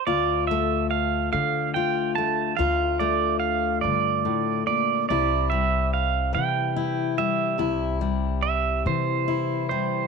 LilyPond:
<<
  \new Staff \with { instrumentName = "Pedal steel guitar" } { \time 6/8 \key d \minor \tempo 4. = 48 d''8 e''8 f''8 f''8 g''8 a''8 | f''8 d''8 f''8 d''4 d''8 | d''8 e''8 f''8 g''4 e''8~ | e''8 r8 e''8 c''4 c''8 | }
  \new Staff \with { instrumentName = "Steel-string acoustic guitar" } { \clef bass \time 6/8 \key d \minor << { f'8 a4. f'8 a8 | f'8 a2~ a8 | e'8 g4. e'8 g8 | e'8 g4. e'8 g8 | } \\ { d,4. d4. | d,4. g,8 a,8 bes,8 | c4. e4. | c4. e4. | } >> }
  \new Staff \with { instrumentName = "Upright bass" } { \clef bass \time 6/8 \key d \minor d,4. d4. | d,4. d4. | c,4. c4. | c,4. c4. | }
>>